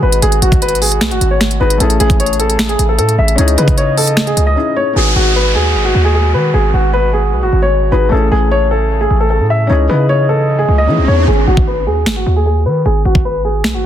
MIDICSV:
0, 0, Header, 1, 8, 480
1, 0, Start_track
1, 0, Tempo, 394737
1, 272, Time_signature, 4, 2, 24, 8
1, 16853, End_track
2, 0, Start_track
2, 0, Title_t, "Grand piano"
2, 0, Program_c, 0, 0
2, 32, Note_on_c, 0, 71, 80
2, 215, Note_off_c, 0, 71, 0
2, 271, Note_on_c, 0, 68, 85
2, 455, Note_off_c, 0, 68, 0
2, 514, Note_on_c, 0, 66, 74
2, 697, Note_off_c, 0, 66, 0
2, 754, Note_on_c, 0, 71, 96
2, 936, Note_off_c, 0, 71, 0
2, 992, Note_on_c, 0, 68, 75
2, 1330, Note_off_c, 0, 68, 0
2, 1352, Note_on_c, 0, 66, 80
2, 1535, Note_off_c, 0, 66, 0
2, 1592, Note_on_c, 0, 73, 76
2, 1931, Note_off_c, 0, 73, 0
2, 1952, Note_on_c, 0, 71, 88
2, 2135, Note_off_c, 0, 71, 0
2, 2194, Note_on_c, 0, 69, 78
2, 2377, Note_off_c, 0, 69, 0
2, 2433, Note_on_c, 0, 68, 98
2, 2616, Note_off_c, 0, 68, 0
2, 2674, Note_on_c, 0, 73, 95
2, 2857, Note_off_c, 0, 73, 0
2, 2912, Note_on_c, 0, 69, 77
2, 3250, Note_off_c, 0, 69, 0
2, 3274, Note_on_c, 0, 68, 84
2, 3457, Note_off_c, 0, 68, 0
2, 3513, Note_on_c, 0, 69, 73
2, 3604, Note_off_c, 0, 69, 0
2, 3631, Note_on_c, 0, 69, 80
2, 3815, Note_off_c, 0, 69, 0
2, 3874, Note_on_c, 0, 76, 77
2, 4057, Note_off_c, 0, 76, 0
2, 4109, Note_on_c, 0, 73, 77
2, 4293, Note_off_c, 0, 73, 0
2, 4353, Note_on_c, 0, 71, 75
2, 4536, Note_off_c, 0, 71, 0
2, 4592, Note_on_c, 0, 73, 89
2, 4775, Note_off_c, 0, 73, 0
2, 4833, Note_on_c, 0, 69, 80
2, 5171, Note_off_c, 0, 69, 0
2, 5195, Note_on_c, 0, 68, 79
2, 5377, Note_off_c, 0, 68, 0
2, 5432, Note_on_c, 0, 75, 80
2, 5771, Note_off_c, 0, 75, 0
2, 5794, Note_on_c, 0, 73, 84
2, 5977, Note_off_c, 0, 73, 0
2, 6032, Note_on_c, 0, 68, 73
2, 6216, Note_off_c, 0, 68, 0
2, 6272, Note_on_c, 0, 66, 83
2, 6455, Note_off_c, 0, 66, 0
2, 6518, Note_on_c, 0, 71, 77
2, 6699, Note_off_c, 0, 71, 0
2, 6753, Note_on_c, 0, 68, 75
2, 7091, Note_off_c, 0, 68, 0
2, 7109, Note_on_c, 0, 66, 76
2, 7294, Note_off_c, 0, 66, 0
2, 7353, Note_on_c, 0, 68, 79
2, 7444, Note_off_c, 0, 68, 0
2, 7471, Note_on_c, 0, 68, 75
2, 7655, Note_off_c, 0, 68, 0
2, 7711, Note_on_c, 0, 71, 76
2, 7895, Note_off_c, 0, 71, 0
2, 7951, Note_on_c, 0, 68, 80
2, 8135, Note_off_c, 0, 68, 0
2, 8194, Note_on_c, 0, 66, 73
2, 8377, Note_off_c, 0, 66, 0
2, 8433, Note_on_c, 0, 71, 90
2, 8616, Note_off_c, 0, 71, 0
2, 8671, Note_on_c, 0, 68, 72
2, 9010, Note_off_c, 0, 68, 0
2, 9032, Note_on_c, 0, 66, 73
2, 9215, Note_off_c, 0, 66, 0
2, 9271, Note_on_c, 0, 73, 75
2, 9610, Note_off_c, 0, 73, 0
2, 9631, Note_on_c, 0, 71, 85
2, 9815, Note_off_c, 0, 71, 0
2, 9873, Note_on_c, 0, 69, 75
2, 10056, Note_off_c, 0, 69, 0
2, 10113, Note_on_c, 0, 68, 92
2, 10296, Note_off_c, 0, 68, 0
2, 10354, Note_on_c, 0, 73, 91
2, 10537, Note_off_c, 0, 73, 0
2, 10592, Note_on_c, 0, 69, 72
2, 10930, Note_off_c, 0, 69, 0
2, 10954, Note_on_c, 0, 68, 77
2, 11137, Note_off_c, 0, 68, 0
2, 11193, Note_on_c, 0, 69, 69
2, 11284, Note_off_c, 0, 69, 0
2, 11311, Note_on_c, 0, 69, 75
2, 11495, Note_off_c, 0, 69, 0
2, 11555, Note_on_c, 0, 76, 76
2, 11737, Note_off_c, 0, 76, 0
2, 11789, Note_on_c, 0, 73, 74
2, 11973, Note_off_c, 0, 73, 0
2, 12032, Note_on_c, 0, 71, 72
2, 12216, Note_off_c, 0, 71, 0
2, 12273, Note_on_c, 0, 73, 88
2, 12456, Note_off_c, 0, 73, 0
2, 12513, Note_on_c, 0, 69, 77
2, 12851, Note_off_c, 0, 69, 0
2, 12874, Note_on_c, 0, 68, 76
2, 13057, Note_off_c, 0, 68, 0
2, 13111, Note_on_c, 0, 75, 75
2, 13450, Note_off_c, 0, 75, 0
2, 13473, Note_on_c, 0, 73, 82
2, 13656, Note_off_c, 0, 73, 0
2, 13712, Note_on_c, 0, 68, 77
2, 13895, Note_off_c, 0, 68, 0
2, 13951, Note_on_c, 0, 66, 86
2, 14135, Note_off_c, 0, 66, 0
2, 14197, Note_on_c, 0, 71, 79
2, 14378, Note_off_c, 0, 71, 0
2, 14433, Note_on_c, 0, 68, 79
2, 14771, Note_off_c, 0, 68, 0
2, 14789, Note_on_c, 0, 66, 78
2, 14974, Note_off_c, 0, 66, 0
2, 15034, Note_on_c, 0, 68, 82
2, 15125, Note_off_c, 0, 68, 0
2, 15152, Note_on_c, 0, 68, 77
2, 15335, Note_off_c, 0, 68, 0
2, 15392, Note_on_c, 0, 71, 77
2, 15575, Note_off_c, 0, 71, 0
2, 15632, Note_on_c, 0, 68, 81
2, 15815, Note_off_c, 0, 68, 0
2, 15875, Note_on_c, 0, 66, 76
2, 16057, Note_off_c, 0, 66, 0
2, 16113, Note_on_c, 0, 71, 92
2, 16296, Note_off_c, 0, 71, 0
2, 16351, Note_on_c, 0, 68, 73
2, 16690, Note_off_c, 0, 68, 0
2, 16712, Note_on_c, 0, 66, 80
2, 16853, Note_off_c, 0, 66, 0
2, 16853, End_track
3, 0, Start_track
3, 0, Title_t, "Felt piano"
3, 0, Program_c, 1, 0
3, 0, Control_c, 1, 64, 127
3, 0, Note_on_c, 1, 59, 69
3, 0, Note_on_c, 1, 63, 60
3, 0, Note_on_c, 1, 66, 64
3, 0, Note_on_c, 1, 68, 81
3, 1887, Note_off_c, 1, 59, 0
3, 1898, Note_off_c, 1, 63, 0
3, 1909, Note_off_c, 1, 66, 0
3, 1919, Note_off_c, 1, 68, 0
3, 1942, Note_on_c, 1, 59, 57
3, 1952, Note_on_c, 1, 63, 53
3, 1963, Note_on_c, 1, 66, 50
3, 1974, Note_on_c, 1, 68, 61
3, 2159, Note_on_c, 1, 57, 70
3, 2181, Note_on_c, 1, 61, 69
3, 2187, Note_off_c, 1, 59, 0
3, 2192, Note_off_c, 1, 63, 0
3, 2198, Note_off_c, 1, 66, 0
3, 2202, Note_on_c, 1, 64, 63
3, 2203, Note_off_c, 1, 68, 0
3, 2209, Control_c, 1, 64, 0
3, 2224, Note_on_c, 1, 68, 77
3, 2439, Control_c, 1, 64, 127
3, 4057, Note_off_c, 1, 57, 0
3, 4062, Note_off_c, 1, 61, 0
3, 4079, Note_off_c, 1, 64, 0
3, 4080, Note_on_c, 1, 61, 75
3, 4090, Note_off_c, 1, 68, 0
3, 4102, Note_on_c, 1, 63, 63
3, 4123, Note_on_c, 1, 64, 64
3, 4128, Control_c, 1, 64, 0
3, 4145, Note_on_c, 1, 68, 78
3, 4306, Control_c, 1, 64, 127
3, 5507, Note_off_c, 1, 61, 0
3, 5518, Note_off_c, 1, 63, 0
3, 5529, Note_off_c, 1, 64, 0
3, 5536, Note_on_c, 1, 61, 55
3, 5540, Note_off_c, 1, 68, 0
3, 5547, Note_on_c, 1, 63, 45
3, 5558, Note_on_c, 1, 64, 49
3, 5568, Note_on_c, 1, 68, 59
3, 5998, Note_on_c, 1, 59, 65
3, 6001, Note_off_c, 1, 63, 0
3, 6019, Note_on_c, 1, 63, 55
3, 6024, Note_off_c, 1, 61, 0
3, 6035, Note_off_c, 1, 64, 0
3, 6040, Note_off_c, 1, 68, 0
3, 6041, Note_on_c, 1, 66, 61
3, 6051, Control_c, 1, 64, 0
3, 6063, Note_on_c, 1, 68, 76
3, 6254, Control_c, 1, 64, 127
3, 9567, Note_off_c, 1, 59, 0
3, 9577, Note_off_c, 1, 63, 0
3, 9588, Note_off_c, 1, 66, 0
3, 9599, Note_off_c, 1, 68, 0
3, 9621, Note_on_c, 1, 59, 50
3, 9632, Note_on_c, 1, 63, 49
3, 9643, Note_on_c, 1, 66, 45
3, 9653, Note_on_c, 1, 68, 57
3, 9839, Note_on_c, 1, 57, 67
3, 9860, Note_on_c, 1, 61, 66
3, 9867, Note_off_c, 1, 59, 0
3, 9872, Note_off_c, 1, 63, 0
3, 9878, Note_off_c, 1, 66, 0
3, 9882, Note_on_c, 1, 64, 62
3, 9883, Note_off_c, 1, 68, 0
3, 9888, Control_c, 1, 64, 0
3, 9903, Note_on_c, 1, 68, 71
3, 10107, Control_c, 1, 64, 127
3, 11737, Note_off_c, 1, 57, 0
3, 11741, Note_off_c, 1, 61, 0
3, 11759, Note_off_c, 1, 64, 0
3, 11759, Note_on_c, 1, 61, 70
3, 11770, Note_off_c, 1, 68, 0
3, 11781, Note_on_c, 1, 63, 58
3, 11802, Note_on_c, 1, 64, 61
3, 11807, Control_c, 1, 64, 0
3, 11824, Note_on_c, 1, 68, 75
3, 11985, Control_c, 1, 64, 127
3, 13187, Note_off_c, 1, 61, 0
3, 13198, Note_off_c, 1, 63, 0
3, 13209, Note_off_c, 1, 64, 0
3, 13216, Note_on_c, 1, 61, 52
3, 13220, Note_off_c, 1, 68, 0
3, 13227, Note_on_c, 1, 63, 44
3, 13237, Note_on_c, 1, 64, 44
3, 13248, Note_on_c, 1, 68, 57
3, 13704, Note_off_c, 1, 61, 0
3, 13710, Note_off_c, 1, 63, 0
3, 13715, Note_off_c, 1, 64, 0
3, 13720, Note_off_c, 1, 68, 0
3, 13730, Control_c, 1, 64, 0
3, 16853, End_track
4, 0, Start_track
4, 0, Title_t, "French horn section"
4, 0, Program_c, 2, 60
4, 0, Note_on_c, 2, 47, 85
4, 0, Note_on_c, 2, 56, 78
4, 0, Note_on_c, 2, 66, 92
4, 2154, Note_off_c, 2, 47, 0
4, 2154, Note_off_c, 2, 56, 0
4, 2154, Note_off_c, 2, 66, 0
4, 2193, Note_on_c, 2, 49, 84
4, 2193, Note_on_c, 2, 57, 79
4, 2193, Note_on_c, 2, 68, 96
4, 4094, Note_off_c, 2, 57, 0
4, 4094, Note_off_c, 2, 68, 0
4, 4112, Note_on_c, 2, 52, 78
4, 4112, Note_on_c, 2, 75, 97
4, 5826, Note_off_c, 2, 49, 0
4, 5826, Note_off_c, 2, 52, 0
4, 5826, Note_off_c, 2, 75, 0
4, 6033, Note_on_c, 2, 47, 81
4, 6033, Note_on_c, 2, 56, 76
4, 6033, Note_on_c, 2, 66, 88
4, 9834, Note_off_c, 2, 47, 0
4, 9834, Note_off_c, 2, 56, 0
4, 9834, Note_off_c, 2, 66, 0
4, 9872, Note_on_c, 2, 57, 74
4, 9872, Note_on_c, 2, 68, 88
4, 9873, Note_on_c, 2, 49, 81
4, 11773, Note_off_c, 2, 57, 0
4, 11773, Note_off_c, 2, 68, 0
4, 11792, Note_on_c, 2, 52, 76
4, 11792, Note_on_c, 2, 75, 88
4, 13674, Note_off_c, 2, 49, 0
4, 13693, Note_off_c, 2, 52, 0
4, 13693, Note_off_c, 2, 75, 0
4, 16853, End_track
5, 0, Start_track
5, 0, Title_t, "808-style bass"
5, 0, Program_c, 3, 38
5, 33, Note_on_c, 3, 32, 106
5, 263, Note_off_c, 3, 32, 0
5, 273, Note_on_c, 3, 32, 114
5, 503, Note_off_c, 3, 32, 0
5, 512, Note_on_c, 3, 32, 109
5, 1233, Note_on_c, 3, 35, 103
5, 1251, Note_off_c, 3, 32, 0
5, 1352, Note_on_c, 3, 32, 99
5, 1371, Note_off_c, 3, 35, 0
5, 1466, Note_off_c, 3, 32, 0
5, 1473, Note_on_c, 3, 32, 116
5, 1933, Note_off_c, 3, 32, 0
5, 1953, Note_on_c, 3, 32, 114
5, 2183, Note_off_c, 3, 32, 0
5, 2193, Note_on_c, 3, 33, 111
5, 2423, Note_off_c, 3, 33, 0
5, 2433, Note_on_c, 3, 33, 105
5, 3354, Note_off_c, 3, 33, 0
5, 3393, Note_on_c, 3, 33, 116
5, 3632, Note_on_c, 3, 45, 100
5, 3651, Note_off_c, 3, 33, 0
5, 3860, Note_off_c, 3, 45, 0
5, 3873, Note_on_c, 3, 33, 108
5, 4103, Note_off_c, 3, 33, 0
5, 4113, Note_on_c, 3, 37, 113
5, 4343, Note_off_c, 3, 37, 0
5, 4353, Note_on_c, 3, 49, 112
5, 5274, Note_off_c, 3, 49, 0
5, 5312, Note_on_c, 3, 37, 115
5, 5552, Note_off_c, 3, 37, 0
5, 6032, Note_on_c, 3, 32, 107
5, 6263, Note_off_c, 3, 32, 0
5, 6273, Note_on_c, 3, 32, 104
5, 6753, Note_on_c, 3, 39, 97
5, 6771, Note_off_c, 3, 32, 0
5, 6992, Note_on_c, 3, 32, 98
5, 7010, Note_off_c, 3, 39, 0
5, 7220, Note_off_c, 3, 32, 0
5, 7232, Note_on_c, 3, 39, 110
5, 7712, Note_on_c, 3, 51, 102
5, 7730, Note_off_c, 3, 39, 0
5, 7940, Note_off_c, 3, 51, 0
5, 7952, Note_on_c, 3, 32, 110
5, 8183, Note_off_c, 3, 32, 0
5, 8193, Note_on_c, 3, 32, 107
5, 8913, Note_on_c, 3, 35, 99
5, 8931, Note_off_c, 3, 32, 0
5, 9033, Note_on_c, 3, 32, 94
5, 9051, Note_off_c, 3, 35, 0
5, 9147, Note_off_c, 3, 32, 0
5, 9152, Note_on_c, 3, 32, 111
5, 9613, Note_off_c, 3, 32, 0
5, 9632, Note_on_c, 3, 32, 104
5, 9863, Note_off_c, 3, 32, 0
5, 9872, Note_on_c, 3, 33, 110
5, 10103, Note_off_c, 3, 33, 0
5, 10112, Note_on_c, 3, 33, 104
5, 11034, Note_off_c, 3, 33, 0
5, 11072, Note_on_c, 3, 33, 113
5, 11432, Note_on_c, 3, 45, 98
5, 11451, Note_off_c, 3, 33, 0
5, 11775, Note_off_c, 3, 45, 0
5, 11793, Note_on_c, 3, 37, 110
5, 12023, Note_off_c, 3, 37, 0
5, 12033, Note_on_c, 3, 49, 104
5, 12954, Note_off_c, 3, 49, 0
5, 12992, Note_on_c, 3, 37, 111
5, 13232, Note_on_c, 3, 52, 97
5, 13251, Note_off_c, 3, 37, 0
5, 13352, Note_on_c, 3, 37, 100
5, 13371, Note_off_c, 3, 52, 0
5, 13466, Note_off_c, 3, 37, 0
5, 13472, Note_on_c, 3, 40, 107
5, 13703, Note_off_c, 3, 40, 0
5, 13713, Note_on_c, 3, 32, 109
5, 13943, Note_off_c, 3, 32, 0
5, 13953, Note_on_c, 3, 32, 110
5, 14433, Note_on_c, 3, 39, 97
5, 14451, Note_off_c, 3, 32, 0
5, 14673, Note_on_c, 3, 32, 97
5, 14691, Note_off_c, 3, 39, 0
5, 14901, Note_off_c, 3, 32, 0
5, 14913, Note_on_c, 3, 39, 113
5, 15393, Note_on_c, 3, 51, 105
5, 15412, Note_off_c, 3, 39, 0
5, 15621, Note_off_c, 3, 51, 0
5, 15633, Note_on_c, 3, 32, 109
5, 15863, Note_off_c, 3, 32, 0
5, 15873, Note_on_c, 3, 32, 109
5, 16593, Note_on_c, 3, 35, 99
5, 16611, Note_off_c, 3, 32, 0
5, 16713, Note_on_c, 3, 32, 97
5, 16731, Note_off_c, 3, 35, 0
5, 16827, Note_off_c, 3, 32, 0
5, 16853, End_track
6, 0, Start_track
6, 0, Title_t, "Downlifter"
6, 0, Program_c, 4, 103
6, 6032, Note_on_c, 4, 60, 87
6, 9872, Note_off_c, 4, 60, 0
6, 16853, End_track
7, 0, Start_track
7, 0, Title_t, "Riser"
7, 0, Program_c, 5, 103
7, 11793, Note_on_c, 5, 60, 89
7, 13713, Note_off_c, 5, 60, 0
7, 16853, End_track
8, 0, Start_track
8, 0, Title_t, "Drums"
8, 151, Note_on_c, 9, 42, 85
8, 273, Note_off_c, 9, 42, 0
8, 273, Note_on_c, 9, 42, 93
8, 390, Note_off_c, 9, 42, 0
8, 390, Note_on_c, 9, 42, 66
8, 511, Note_off_c, 9, 42, 0
8, 513, Note_on_c, 9, 42, 85
8, 632, Note_on_c, 9, 36, 97
8, 635, Note_off_c, 9, 42, 0
8, 639, Note_on_c, 9, 42, 65
8, 753, Note_off_c, 9, 36, 0
8, 753, Note_off_c, 9, 42, 0
8, 753, Note_on_c, 9, 42, 81
8, 833, Note_off_c, 9, 42, 0
8, 833, Note_on_c, 9, 42, 64
8, 913, Note_off_c, 9, 42, 0
8, 913, Note_on_c, 9, 42, 51
8, 994, Note_on_c, 9, 46, 76
8, 1035, Note_off_c, 9, 42, 0
8, 1115, Note_off_c, 9, 46, 0
8, 1115, Note_on_c, 9, 42, 64
8, 1229, Note_on_c, 9, 26, 99
8, 1230, Note_off_c, 9, 42, 0
8, 1230, Note_on_c, 9, 42, 81
8, 1232, Note_on_c, 9, 38, 119
8, 1350, Note_off_c, 9, 26, 0
8, 1352, Note_off_c, 9, 42, 0
8, 1353, Note_off_c, 9, 38, 0
8, 1354, Note_on_c, 9, 42, 52
8, 1474, Note_off_c, 9, 42, 0
8, 1474, Note_on_c, 9, 42, 92
8, 1596, Note_off_c, 9, 42, 0
8, 1711, Note_on_c, 9, 26, 77
8, 1712, Note_on_c, 9, 42, 76
8, 1714, Note_on_c, 9, 38, 95
8, 1832, Note_off_c, 9, 26, 0
8, 1833, Note_off_c, 9, 42, 0
8, 1834, Note_on_c, 9, 42, 61
8, 1835, Note_off_c, 9, 38, 0
8, 1955, Note_off_c, 9, 42, 0
8, 2071, Note_on_c, 9, 42, 81
8, 2193, Note_off_c, 9, 42, 0
8, 2193, Note_on_c, 9, 42, 94
8, 2310, Note_off_c, 9, 42, 0
8, 2310, Note_on_c, 9, 42, 69
8, 2432, Note_off_c, 9, 42, 0
8, 2433, Note_on_c, 9, 42, 83
8, 2552, Note_on_c, 9, 36, 99
8, 2555, Note_off_c, 9, 42, 0
8, 2559, Note_on_c, 9, 42, 66
8, 2673, Note_off_c, 9, 36, 0
8, 2673, Note_off_c, 9, 42, 0
8, 2673, Note_on_c, 9, 42, 83
8, 2753, Note_off_c, 9, 42, 0
8, 2753, Note_on_c, 9, 42, 66
8, 2833, Note_off_c, 9, 42, 0
8, 2833, Note_on_c, 9, 42, 50
8, 2914, Note_off_c, 9, 42, 0
8, 2914, Note_on_c, 9, 42, 77
8, 3035, Note_off_c, 9, 42, 0
8, 3035, Note_on_c, 9, 42, 64
8, 3149, Note_on_c, 9, 26, 92
8, 3150, Note_off_c, 9, 42, 0
8, 3150, Note_on_c, 9, 42, 80
8, 3152, Note_on_c, 9, 38, 119
8, 3271, Note_off_c, 9, 26, 0
8, 3272, Note_off_c, 9, 42, 0
8, 3273, Note_off_c, 9, 38, 0
8, 3273, Note_on_c, 9, 42, 54
8, 3394, Note_off_c, 9, 42, 0
8, 3394, Note_on_c, 9, 42, 93
8, 3515, Note_off_c, 9, 42, 0
8, 3631, Note_on_c, 9, 42, 81
8, 3752, Note_off_c, 9, 42, 0
8, 3753, Note_on_c, 9, 42, 57
8, 3875, Note_off_c, 9, 42, 0
8, 3990, Note_on_c, 9, 42, 82
8, 4112, Note_off_c, 9, 42, 0
8, 4112, Note_on_c, 9, 42, 98
8, 4229, Note_off_c, 9, 42, 0
8, 4229, Note_on_c, 9, 42, 68
8, 4350, Note_off_c, 9, 42, 0
8, 4352, Note_on_c, 9, 42, 81
8, 4471, Note_on_c, 9, 36, 94
8, 4474, Note_off_c, 9, 42, 0
8, 4477, Note_on_c, 9, 42, 64
8, 4591, Note_off_c, 9, 42, 0
8, 4591, Note_on_c, 9, 42, 81
8, 4593, Note_off_c, 9, 36, 0
8, 4713, Note_off_c, 9, 42, 0
8, 4833, Note_on_c, 9, 46, 76
8, 4954, Note_on_c, 9, 42, 64
8, 4955, Note_off_c, 9, 46, 0
8, 5069, Note_on_c, 9, 26, 95
8, 5070, Note_off_c, 9, 42, 0
8, 5070, Note_on_c, 9, 42, 79
8, 5072, Note_on_c, 9, 38, 118
8, 5190, Note_off_c, 9, 26, 0
8, 5192, Note_off_c, 9, 42, 0
8, 5193, Note_off_c, 9, 38, 0
8, 5194, Note_on_c, 9, 42, 54
8, 5314, Note_off_c, 9, 42, 0
8, 5314, Note_on_c, 9, 42, 95
8, 5436, Note_off_c, 9, 42, 0
8, 14072, Note_on_c, 9, 36, 90
8, 14193, Note_off_c, 9, 36, 0
8, 14669, Note_on_c, 9, 26, 95
8, 14672, Note_on_c, 9, 38, 121
8, 14790, Note_off_c, 9, 26, 0
8, 14793, Note_off_c, 9, 38, 0
8, 15991, Note_on_c, 9, 36, 91
8, 16113, Note_off_c, 9, 36, 0
8, 16588, Note_on_c, 9, 26, 91
8, 16591, Note_on_c, 9, 38, 114
8, 16710, Note_off_c, 9, 26, 0
8, 16713, Note_off_c, 9, 38, 0
8, 16853, End_track
0, 0, End_of_file